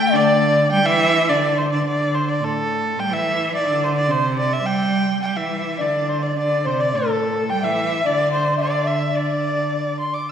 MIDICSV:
0, 0, Header, 1, 4, 480
1, 0, Start_track
1, 0, Tempo, 566572
1, 105, Time_signature, 2, 2, 24, 8
1, 5866, Tempo, 549451
1, 7786, Tempo, 580833
1, 8775, End_track
2, 0, Start_track
2, 0, Title_t, "Dizi"
2, 0, Program_c, 0, 73
2, 0, Note_on_c, 0, 79, 100
2, 98, Note_on_c, 0, 74, 89
2, 110, Note_off_c, 0, 79, 0
2, 584, Note_off_c, 0, 74, 0
2, 4895, Note_on_c, 0, 74, 75
2, 5351, Note_off_c, 0, 74, 0
2, 5385, Note_on_c, 0, 74, 78
2, 5633, Note_on_c, 0, 72, 72
2, 5646, Note_off_c, 0, 74, 0
2, 5754, Note_on_c, 0, 74, 75
2, 5767, Note_off_c, 0, 72, 0
2, 5860, Note_off_c, 0, 74, 0
2, 5865, Note_on_c, 0, 69, 77
2, 6322, Note_off_c, 0, 69, 0
2, 6359, Note_on_c, 0, 79, 93
2, 6472, Note_off_c, 0, 79, 0
2, 6475, Note_on_c, 0, 76, 85
2, 6810, Note_off_c, 0, 76, 0
2, 6843, Note_on_c, 0, 74, 92
2, 7279, Note_off_c, 0, 74, 0
2, 7303, Note_on_c, 0, 76, 75
2, 7344, Note_on_c, 0, 74, 82
2, 7353, Note_off_c, 0, 76, 0
2, 7546, Note_on_c, 0, 76, 81
2, 7559, Note_off_c, 0, 74, 0
2, 7771, Note_off_c, 0, 76, 0
2, 7776, Note_on_c, 0, 74, 74
2, 8463, Note_off_c, 0, 74, 0
2, 8775, End_track
3, 0, Start_track
3, 0, Title_t, "Erhu"
3, 0, Program_c, 1, 110
3, 0, Note_on_c, 1, 79, 104
3, 133, Note_on_c, 1, 74, 94
3, 146, Note_off_c, 1, 79, 0
3, 602, Note_off_c, 1, 74, 0
3, 607, Note_on_c, 1, 79, 107
3, 727, Note_on_c, 1, 76, 119
3, 740, Note_off_c, 1, 79, 0
3, 1092, Note_on_c, 1, 74, 94
3, 1105, Note_off_c, 1, 76, 0
3, 1336, Note_on_c, 1, 72, 83
3, 1349, Note_off_c, 1, 74, 0
3, 1450, Note_off_c, 1, 72, 0
3, 1455, Note_on_c, 1, 74, 73
3, 1562, Note_off_c, 1, 74, 0
3, 1585, Note_on_c, 1, 74, 81
3, 1816, Note_on_c, 1, 72, 76
3, 1829, Note_off_c, 1, 74, 0
3, 1936, Note_on_c, 1, 74, 79
3, 1948, Note_off_c, 1, 72, 0
3, 2069, Note_on_c, 1, 69, 92
3, 2082, Note_off_c, 1, 74, 0
3, 2540, Note_on_c, 1, 79, 96
3, 2553, Note_off_c, 1, 69, 0
3, 2651, Note_on_c, 1, 76, 101
3, 2664, Note_off_c, 1, 79, 0
3, 3001, Note_off_c, 1, 76, 0
3, 3006, Note_on_c, 1, 74, 90
3, 3253, Note_on_c, 1, 72, 85
3, 3266, Note_off_c, 1, 74, 0
3, 3351, Note_off_c, 1, 72, 0
3, 3356, Note_on_c, 1, 74, 86
3, 3480, Note_on_c, 1, 72, 90
3, 3493, Note_off_c, 1, 74, 0
3, 3709, Note_off_c, 1, 72, 0
3, 3720, Note_on_c, 1, 74, 81
3, 3838, Note_on_c, 1, 76, 91
3, 3851, Note_off_c, 1, 74, 0
3, 3950, Note_on_c, 1, 79, 91
3, 3963, Note_off_c, 1, 76, 0
3, 4416, Note_off_c, 1, 79, 0
3, 4422, Note_on_c, 1, 79, 73
3, 4545, Note_on_c, 1, 76, 76
3, 4557, Note_off_c, 1, 79, 0
3, 4924, Note_on_c, 1, 74, 78
3, 4937, Note_off_c, 1, 76, 0
3, 5128, Note_off_c, 1, 74, 0
3, 5128, Note_on_c, 1, 74, 61
3, 5161, Note_on_c, 1, 72, 78
3, 5173, Note_off_c, 1, 74, 0
3, 5273, Note_on_c, 1, 74, 76
3, 5286, Note_off_c, 1, 72, 0
3, 5392, Note_off_c, 1, 74, 0
3, 5409, Note_on_c, 1, 74, 80
3, 5642, Note_on_c, 1, 72, 73
3, 5654, Note_off_c, 1, 74, 0
3, 5765, Note_on_c, 1, 74, 82
3, 5778, Note_off_c, 1, 72, 0
3, 5888, Note_on_c, 1, 69, 78
3, 5901, Note_off_c, 1, 74, 0
3, 6367, Note_on_c, 1, 79, 84
3, 6380, Note_off_c, 1, 69, 0
3, 6491, Note_on_c, 1, 76, 88
3, 6504, Note_off_c, 1, 79, 0
3, 6861, Note_on_c, 1, 74, 87
3, 6874, Note_off_c, 1, 76, 0
3, 7079, Note_off_c, 1, 74, 0
3, 7085, Note_on_c, 1, 72, 77
3, 7299, Note_off_c, 1, 72, 0
3, 7340, Note_on_c, 1, 74, 81
3, 7570, Note_on_c, 1, 76, 72
3, 7584, Note_off_c, 1, 74, 0
3, 7813, Note_on_c, 1, 74, 75
3, 7825, Note_off_c, 1, 76, 0
3, 8503, Note_off_c, 1, 74, 0
3, 8508, Note_on_c, 1, 84, 64
3, 8630, Note_on_c, 1, 86, 65
3, 8643, Note_off_c, 1, 84, 0
3, 8765, Note_off_c, 1, 86, 0
3, 8775, End_track
4, 0, Start_track
4, 0, Title_t, "Cello"
4, 0, Program_c, 2, 42
4, 0, Note_on_c, 2, 57, 99
4, 109, Note_on_c, 2, 50, 81
4, 122, Note_off_c, 2, 57, 0
4, 590, Note_off_c, 2, 50, 0
4, 599, Note_on_c, 2, 55, 105
4, 708, Note_off_c, 2, 55, 0
4, 723, Note_on_c, 2, 52, 101
4, 1090, Note_on_c, 2, 50, 77
4, 1102, Note_off_c, 2, 52, 0
4, 1448, Note_off_c, 2, 50, 0
4, 1455, Note_on_c, 2, 50, 70
4, 1562, Note_off_c, 2, 50, 0
4, 1566, Note_on_c, 2, 50, 78
4, 2048, Note_on_c, 2, 45, 67
4, 2061, Note_off_c, 2, 50, 0
4, 2524, Note_on_c, 2, 55, 85
4, 2537, Note_off_c, 2, 45, 0
4, 2638, Note_on_c, 2, 52, 81
4, 2651, Note_off_c, 2, 55, 0
4, 2994, Note_on_c, 2, 50, 82
4, 3007, Note_off_c, 2, 52, 0
4, 3461, Note_on_c, 2, 48, 84
4, 3474, Note_off_c, 2, 50, 0
4, 3919, Note_off_c, 2, 48, 0
4, 3924, Note_on_c, 2, 55, 85
4, 4377, Note_off_c, 2, 55, 0
4, 4421, Note_on_c, 2, 55, 74
4, 4539, Note_on_c, 2, 52, 68
4, 4551, Note_off_c, 2, 55, 0
4, 4899, Note_on_c, 2, 50, 66
4, 4912, Note_off_c, 2, 52, 0
4, 5387, Note_off_c, 2, 50, 0
4, 5394, Note_on_c, 2, 50, 67
4, 5639, Note_on_c, 2, 48, 70
4, 5652, Note_off_c, 2, 50, 0
4, 5879, Note_on_c, 2, 45, 68
4, 5892, Note_off_c, 2, 48, 0
4, 6369, Note_on_c, 2, 55, 76
4, 6382, Note_off_c, 2, 45, 0
4, 6492, Note_on_c, 2, 52, 80
4, 6505, Note_off_c, 2, 55, 0
4, 6844, Note_off_c, 2, 52, 0
4, 6859, Note_on_c, 2, 50, 76
4, 7288, Note_off_c, 2, 50, 0
4, 7324, Note_on_c, 2, 50, 77
4, 7763, Note_off_c, 2, 50, 0
4, 7802, Note_on_c, 2, 50, 67
4, 8476, Note_off_c, 2, 50, 0
4, 8775, End_track
0, 0, End_of_file